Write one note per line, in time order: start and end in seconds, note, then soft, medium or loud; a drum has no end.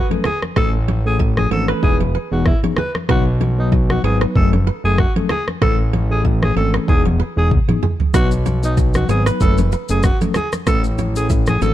0.00 0.56 B4 medium
0.00 impact medium
0.10 0.26 F#3 medium
0.10 0.26 A3 medium
0.10 0.26 C#4 medium
0.10 0.26 A4 medium
0.10 0.22 C#5 medium
0.10 high conga medium
0.24 0.40 G#4 medium
0.24 0.39 A4 medium
0.24 cross-stick loud
0.24 low conga medium
0.42 cross-stick medium
0.42 high conga medium
0.56 1.47 A1 loud
0.56 0.75 E3 medium
0.56 0.75 A3 medium
0.56 0.75 C#4 medium
0.56 0.75 A4 loud
0.56 0.72 A4 loud
0.56 0.70 B4 loud
0.56 kick loud
0.56 cross-stick medium
0.56 low conga medium
0.88 1.02 C#5 medium
0.88 high conga medium
1.05 1.48 E3 medium
1.05 1.48 A3 medium
1.05 1.48 C#4 medium
1.05 1.18 G#4 medium
1.05 1.48 A4 medium
1.19 1.33 E5 medium
1.19 kick medium
1.37 1.50 G#4 medium
1.37 cross-stick medium
1.37 high conga medium
1.51 1.73 G#1 medium
1.51 1.80 E3 medium
1.51 1.80 A3 medium
1.51 1.80 C#4 medium
1.51 1.80 A4 medium
1.51 1.66 A4 medium
1.51 1.68 C#5 medium
1.68 2.14 B4 medium
1.68 cross-stick medium
1.82 2.18 E1 loud
1.82 2.01 E3 medium
1.82 2.01 B3 medium
1.82 2.01 D#4 medium
1.82 2.01 G#4 loud
1.82 1.98 G#4 medium
1.82 kick loud
1.82 low conga medium
2.00 2.11 C#5 medium
2.00 high conga medium
2.15 2.28 B4 medium
2.31 2.54 E1 medium
2.31 2.47 E3 medium
2.31 2.47 B3 medium
2.31 2.47 D#4 medium
2.31 2.44 F#4 medium
2.31 2.47 G#4 medium
2.46 2.61 E4 medium
2.46 kick medium
2.46 cross-stick medium
2.63 2.79 E3 medium
2.63 2.79 B3 medium
2.63 2.79 D#4 medium
2.63 2.79 G#4 medium
2.63 2.75 C#5 medium
2.63 high conga medium
2.77 2.91 G#4 medium
2.77 2.93 B4 medium
2.77 cross-stick loud
2.77 low conga medium
2.95 cross-stick medium
2.95 high conga medium
3.09 4.00 B1 loud
3.09 3.27 F#3 medium
3.09 3.27 B3 medium
3.09 3.28 D#4 medium
3.09 3.25 F#4 medium
3.09 3.23 B4 loud
3.09 3.28 B4 medium
3.09 kick loud
3.09 cross-stick medium
3.09 low conga medium
3.41 3.54 C#5 medium
3.41 high conga medium
3.58 4.00 F#3 medium
3.58 4.00 B3 medium
3.58 4.00 D#4 medium
3.58 3.71 D#4 medium
3.58 4.00 B4 medium
3.72 3.86 D#5 medium
3.72 kick medium
3.90 4.02 F#4 medium
3.90 cross-stick medium
3.90 high conga medium
4.04 4.26 G#1 medium
4.04 4.33 F#3 medium
4.04 4.33 B3 medium
4.04 4.33 D#4 medium
4.04 4.19 G#4 medium
4.04 4.33 B4 medium
4.04 4.18 C#5 medium
4.21 4.32 B4 medium
4.21 cross-stick medium
4.35 4.70 F#1 loud
4.35 4.54 F#3 medium
4.35 4.54 A3 medium
4.35 4.54 C#4 medium
4.35 4.54 A4 medium
4.35 4.51 A4 medium
4.35 kick loud
4.35 low conga medium
4.53 4.64 C#5 medium
4.53 high conga medium
4.67 4.81 B4 medium
4.84 5.07 F#1 medium
4.84 5.00 F#3 medium
4.84 5.00 A3 medium
4.84 5.00 C#4 medium
4.84 4.97 G#4 medium
4.84 5.00 A4 medium
4.98 5.14 F#4 medium
4.98 kick medium
4.98 cross-stick loud
5.16 5.31 F#3 medium
5.16 5.32 A3 medium
5.16 5.32 C#4 medium
5.16 5.32 A4 medium
5.16 5.27 C#5 medium
5.16 high conga medium
5.29 5.45 G#4 medium
5.29 5.44 A4 medium
5.29 cross-stick loud
5.29 low conga medium
5.48 cross-stick medium
5.48 high conga medium
5.61 6.52 A1 loud
5.61 5.80 E3 medium
5.61 5.80 A3 medium
5.61 5.80 C#4 medium
5.61 5.80 A4 loud
5.61 5.77 A4 loud
5.61 5.75 B4 loud
5.61 kick loud
5.61 cross-stick medium
5.61 low conga medium
5.93 6.07 C#5 medium
5.93 high conga medium
6.10 6.53 E3 medium
6.10 6.53 A3 medium
6.10 6.53 C#4 medium
6.10 6.23 G#4 medium
6.10 6.53 A4 medium
6.25 6.38 E5 medium
6.25 kick medium
6.43 6.55 G#4 medium
6.43 cross-stick medium
6.43 high conga medium
6.56 6.79 G#1 medium
6.56 6.85 E3 medium
6.56 6.85 A3 medium
6.56 6.85 C#4 medium
6.56 6.86 A4 medium
6.56 6.72 A4 medium
6.56 6.70 C#5 medium
6.74 6.85 B4 medium
6.74 cross-stick medium
6.87 7.23 E1 loud
6.87 7.06 E3 medium
6.87 7.06 B3 medium
6.87 7.06 D#4 medium
6.87 7.06 G#4 loud
6.87 7.03 G#4 medium
6.87 kick loud
6.87 low conga medium
7.05 7.16 C#5 medium
7.05 high conga medium
7.20 7.33 B4 medium
7.36 7.59 E1 medium
7.36 7.52 E3 medium
7.36 7.52 B3 medium
7.36 7.52 D#4 medium
7.36 7.53 G#4 medium
7.36 7.50 G#4 medium
7.51 kick medium
7.51 high tom medium
7.68 7.84 E3 medium
7.68 7.84 B3 medium
7.68 7.84 D#4 medium
7.68 7.84 G#4 medium
7.68 7.80 C#5 medium
7.68 mid tom medium
7.68 high conga medium
7.83 7.96 G#4 medium
7.83 mid tom medium
7.83 low conga medium
8.00 floor tom medium
8.00 high conga medium
8.13 9.05 B1 loud
8.13 8.32 F#3 medium
8.13 8.32 B3 medium
8.13 8.33 D#4 medium
8.13 8.29 F#4 loud
8.13 8.33 B4 medium
8.13 8.28 B4 loud
8.13 kick loud
8.13 cross-stick medium
8.13 low conga medium
8.13 shaker medium
8.31 shaker medium
8.46 8.59 C#5 medium
8.46 high conga medium
8.46 shaker soft
8.63 9.05 F#3 medium
8.63 9.05 B3 medium
8.63 9.05 D#4 medium
8.63 8.76 D#4 medium
8.63 9.06 B4 medium
8.63 shaker medium
8.77 8.91 D#5 medium
8.77 kick medium
8.77 shaker medium
8.94 9.08 F#4 medium
8.94 cross-stick medium
8.94 high conga medium
8.94 shaker medium
9.09 9.31 G#1 medium
9.09 9.38 F#3 medium
9.09 9.38 B3 medium
9.09 9.38 D#4 medium
9.09 9.24 G#4 medium
9.09 9.38 B4 medium
9.09 9.26 C#5 medium
9.09 shaker medium
9.26 9.72 B4 medium
9.26 cross-stick medium
9.26 shaker medium
9.40 9.76 F#1 loud
9.40 9.59 F#3 medium
9.40 9.59 A3 medium
9.40 9.59 C#4 medium
9.40 9.59 A4 medium
9.40 9.56 A4 medium
9.40 kick loud
9.40 low conga medium
9.40 shaker medium
9.58 9.69 C#5 medium
9.58 high conga medium
9.58 shaker medium
9.72 9.86 B4 medium
9.72 shaker soft
9.89 10.12 F#1 medium
9.89 10.05 F#3 medium
9.89 10.05 A3 medium
9.89 10.05 C#4 medium
9.89 10.02 G#4 medium
9.89 10.05 A4 medium
9.89 shaker medium
10.03 10.19 F#4 medium
10.03 kick loud
10.03 cross-stick loud
10.03 shaker medium
10.20 10.36 F#3 medium
10.20 10.36 A3 medium
10.20 10.37 C#4 medium
10.20 10.37 A4 medium
10.20 10.33 C#5 medium
10.20 high conga medium
10.20 shaker soft
10.34 10.51 G#4 medium
10.34 10.49 A4 medium
10.34 cross-stick loud
10.34 low conga medium
10.34 shaker medium
10.52 cross-stick medium
10.52 high conga medium
10.52 shaker medium
10.66 11.57 A1 loud
10.66 10.85 E3 medium
10.66 10.85 A3 medium
10.66 10.85 C#4 medium
10.66 10.85 A4 loud
10.66 10.82 A4 loud
10.66 10.81 B4 loud
10.66 kick loud
10.66 cross-stick loud
10.66 low conga medium
10.66 shaker medium
10.84 shaker medium
10.98 11.12 C#5 medium
10.98 high conga medium
10.98 shaker soft
11.15 11.58 E3 medium
11.15 11.58 A3 medium
11.15 11.58 C#4 medium
11.15 11.29 G#4 medium
11.15 11.58 A4 medium
11.15 shaker medium
11.30 11.44 E5 medium
11.30 kick medium
11.30 shaker medium
11.46 11.60 G#4 medium
11.46 cross-stick medium
11.46 high conga medium
11.46 shaker medium
11.61 11.74 G#1 medium
11.61 11.74 E3 medium
11.61 11.74 A3 medium
11.61 11.74 C#4 medium
11.61 11.74 A4 medium
11.61 11.74 C#5 medium
11.61 shaker medium